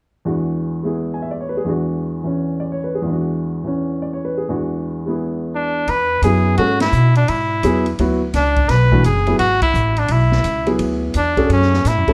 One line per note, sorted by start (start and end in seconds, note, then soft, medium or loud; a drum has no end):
0.25 1.63 E2 soft
0.25 1.64 E3 soft
0.25 0.82 G#3 soft
0.25 1.67 D4 soft
0.25 1.67 F#4 soft
0.83 1.66 G#3 soft
0.83 1.66 B3 soft
0.83 1.67 E4 soft
0.83 1.56 G#4 soft
1.14 1.25 G#5 soft
1.22 1.35 E5 soft
1.31 1.47 D5 soft
1.41 1.55 C#5 soft
1.49 1.60 B4 soft
1.57 1.70 G#4 soft
1.64 3.00 E2 soft
1.64 2.22 E3 soft
1.64 3.06 G#3 soft
1.68 3.08 D4 soft
1.68 3.08 F#4 soft
2.24 3.03 E3 soft
2.24 3.08 C#4 soft
2.60 2.78 D5 soft
2.72 2.93 C#5 soft
2.84 3.02 B4 soft
2.95 3.13 G#4 soft
3.02 4.45 E2 soft
3.02 3.62 E3 soft
3.07 4.48 G#3 soft
3.07 4.48 D4 soft
3.13 4.49 F#4 soft
3.64 4.47 E3 soft
3.64 4.49 C#4 soft
4.02 4.19 D5 soft
4.13 4.34 C#5 soft
4.25 4.42 B4 soft
4.37 4.54 G#4 soft
4.49 5.88 E2 soft
4.49 5.89 E3 soft
4.49 5.04 G#3 soft
4.49 5.89 D4 soft
4.49 5.89 F#4 soft
5.06 5.88 G#3 soft
5.06 5.88 B3 soft
5.06 5.89 E4 soft
5.06 5.89 G#4 soft
5.55 5.91 D4 medium
5.87 6.21 E2 medium
5.87 6.23 B4 loud
5.87 ride soft
6.22 6.57 F#2 medium
6.22 6.57 F#3 medium
6.22 6.57 B3 soft
6.22 6.58 E4 medium
6.22 6.56 G#4 medium
6.22 6.58 G#4 medium
6.22 hi-hat pedal soft
6.22 ride medium
6.57 6.92 G#2 medium
6.57 6.79 G#3 medium
6.57 6.79 C#4 soft
6.57 6.79 F#4 medium
6.57 6.79 A4 medium
6.57 ride medium
6.80 7.14 E4 medium
6.80 snare medium
6.80 ride medium
6.92 7.27 B2 medium
6.92 hi-hat pedal medium
7.15 7.30 D4 medium
7.15 ride soft
7.28 7.62 G#2 medium
7.28 7.99 E4 medium
7.28 ride medium
7.63 7.97 E2 medium
7.63 7.84 F#3 medium
7.63 7.84 B3 medium
7.63 7.84 E4 medium
7.63 7.84 G#4 medium
7.63 hi-hat pedal soft
7.63 ride medium
7.86 ride soft
7.99 8.33 D2 medium
7.99 8.19 F#3 medium
7.99 8.20 B3 medium
7.99 8.19 E4 medium
7.99 8.20 F#4 medium
7.99 ride soft
8.34 8.68 C#2 medium
8.34 8.72 D4 medium
8.34 snare soft
8.34 hi-hat pedal soft
8.34 ride medium
8.56 kick soft
8.56 ride soft
8.69 9.03 B1 medium
8.69 9.04 B4 medium
8.69 snare soft
8.69 ride medium
8.92 9.03 E3 medium
8.92 9.03 A3 medium
8.92 9.03 D4 medium
8.92 9.03 F#4 medium
8.92 kick soft
9.04 9.38 F#1 medium
9.04 9.37 G#4 medium
9.04 hi-hat pedal soft
9.04 ride medium
9.27 9.38 F#3 medium
9.27 9.38 B3 soft
9.27 9.38 E4 medium
9.27 9.38 G#4 medium
9.27 ride soft
9.39 9.73 G#1 medium
9.39 9.60 F#4 medium
9.39 ride medium
9.62 10.00 E4 medium
9.62 kick medium
9.62 ride medium
9.74 10.08 A1 medium
9.74 hi-hat pedal medium
9.96 10.13 D4 medium
9.96 ride soft
10.08 10.43 B1 medium
10.08 10.81 E4 medium
10.08 ride medium
10.32 snare soft
10.44 10.78 C#2 medium
10.44 hi-hat pedal soft
10.44 ride medium
10.66 11.12 F#3 medium
10.66 11.12 B3 soft
10.66 11.12 E4 medium
10.66 11.12 G#4 medium
10.66 ride soft
10.79 11.13 D2 medium
10.79 ride medium
11.14 11.49 E2 medium
11.14 11.49 D4 medium
11.14 hi-hat pedal medium
11.14 ride medium
11.37 11.82 C#4 soft
11.37 11.83 F#4 medium
11.37 11.82 G#4 medium
11.37 11.83 A4 medium
11.37 kick soft
11.37 ride soft
11.49 11.84 F#2 medium
11.49 11.89 C#4 medium
11.49 ride medium
11.62 snare soft
11.73 snare soft
11.85 11.97 A2 medium
11.85 12.13 E4 medium
11.85 snare soft
11.85 hi-hat pedal soft
11.85 ride medium
11.97 12.08 F#2 soft
12.08 12.13 D2 medium
12.08 12.13 G#3 medium
12.08 12.13 C#4 medium
12.08 12.13 F#4 medium
12.08 12.13 A4 medium
12.08 kick soft
12.08 ride soft